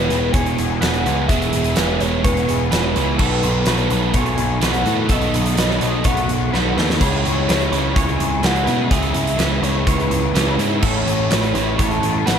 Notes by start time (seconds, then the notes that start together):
Already playing: E2 B2 E3 G#3 B3 G#4 B4
0.09 E1 E3 G#3 B3 E4 G#4, closed hi-hat
0.32 E1 E3 G#3 B3 C#5 G#5, kick, closed hi-hat
0.38 G#4
0.46 closed hi-hat
0.57 E1 E2 B2 E3 G#3 B3 G#4, closed hi-hat
0.80 E1 E3 G#3 B3 E4 G#4 B4 F#5, snare, closed hi-hat
0.94 closed hi-hat
1.04 C#2 E3 G#3 B3 E4 G#4, closed hi-hat
1.28 E1 E2 B2 E3 G#3 B3 E4 G#4 E5, kick, closed hi-hat
1.42 closed hi-hat
1.52 E1 E3 G#3 B3 G#4, closed hi-hat
1.64 closed hi-hat
1.75 E1 E2 B2 E3 G#3 B3 B4, snare, closed hi-hat
1.79 E4 G#4
1.99 E1 E3 G#3 B3 E4 G#4 C#5, closed hi-hat
2.23 E1 E3 G#3 B3 G#4 B4 C#5, kick, closed hi-hat
2.37 closed hi-hat
2.47 E1 E2 B2 E3 G#3 B3 G#4, closed hi-hat
2.71 E1 E3 G#3 B3 E4 G#4 B4, snare, closed hi-hat
2.95 C#2 E3 G#3 B3 E4 G#4, closed hi-hat
3.18 B1 B2 D#3 F#3 A3 B3 D#4 F#4 A4 B4, kick, crash
3.43 B1 A3 B3 F#4, closed hi-hat
3.65 B1 B2 D#3 F#3 A3 B3 D#4 F#4 A4 B4, snare, closed hi-hat
3.78 closed hi-hat
3.90 B1 F#3 A3 B3 D#4 F#4 A4, closed hi-hat
4.13 B1 D#3 A3 B3 F#4 C#5 G#5, kick, closed hi-hat
4.26 closed hi-hat
4.37 B1 B2 D#3 A3 B3 F#4, closed hi-hat
4.61 B1 B2 D#3 F#3 A3 B3 D#4 F#4 A4 B4 F#5, snare, closed hi-hat
4.74 closed hi-hat
4.85 A2 F#3 A3 B3 D#4 F#4 A4, closed hi-hat
5.09 B1 B2 D#3 F#3 A3 B3 D#4 F#4 A4 D#5, kick, closed hi-hat
5.21 closed hi-hat
5.32 B1 A3 B3 F#4, closed hi-hat
5.46 closed hi-hat
5.56 B1 B2 D#3 F#3 A3 B3 D#4 F#4 A4 B4, snare, closed hi-hat
5.70 snare
5.80 B1 F#3 B3 D#4 F#4 A4 D#5, closed hi-hat
5.84 A3
6.04 B1 D#3 A3 B3 F#4 C#5 F#5, kick, closed hi-hat
6.17 closed hi-hat
6.28 B1 B2 D#3 A3 B3 F#4, closed hi-hat
6.52 B1 B2 D#3 F#3 A3 B3 D#4 B4, snare
6.56 F#4 A4
6.75 D#2 A3 B3 D#4 F#4 A4, snare
6.79 F#3
6.90 snare
6.99 C#2 C#3 E3 G#3 C#4 E4 G#4, kick, closed hi-hat, crash
7.05 C#5
7.23 C#2 G#3 C#4 E4, closed hi-hat
7.46 C#2 C#3 E3 G#3 C#4 E4 B4, closed hi-hat
7.50 snare
7.61 closed hi-hat
7.70 C#2 G#3 C#4 E4, closed hi-hat
7.93 C#2 E3 G#3 C#4 E4 C#5 G#5, kick, closed hi-hat
8.09 closed hi-hat
8.19 C#2 C#3 E3 G#3 C#4 E4, closed hi-hat
8.42 C#2 C#3 E3 G#3 C#4 E4 B4 F#5, snare, closed hi-hat
8.56 closed hi-hat
8.66 B2 G#3 C#4 E4, closed hi-hat
8.89 C#2 C#3 E3 G#3 C#4 E4 G#4 E5, kick, closed hi-hat
9.02 closed hi-hat
9.14 C#2 G#3 C#4 E4, closed hi-hat
9.27 closed hi-hat
9.37 C#2 C#3 E3 G#3 C#4 B4, snare, closed hi-hat
9.41 E4
9.61 C#2 G#3 C#4 E4 C#5, closed hi-hat
9.85 C#2 E3 G#3 C#4 E4 B4 C#5, kick, closed hi-hat
10.00 closed hi-hat
10.09 C#2 C#3 E3 G#3 C#4 E4, closed hi-hat
10.33 C#2 C#3 E3 G#3 C#4 E4 B4, snare, closed hi-hat
10.57 G#2 C#4 E4, closed hi-hat
10.61 G#3
10.82 A1 A2 E3 A3 C#4 E4 A4 C#5, kick, crash
11.05 A1 A3 C#4 E4, closed hi-hat
11.29 A1 A2 E3 A3 C#4 E4 B4, snare, closed hi-hat
11.43 closed hi-hat
11.54 A1 A3 C#4 E4, closed hi-hat
11.77 A1 E3 A3 C#4 E4 C#5 A5, kick, closed hi-hat
11.91 closed hi-hat
12.01 A1 A2 E3 A3 C#4 E4, closed hi-hat
12.25 A1 A2 E3 A3 C#4 E4 B4 F#5, snare, closed hi-hat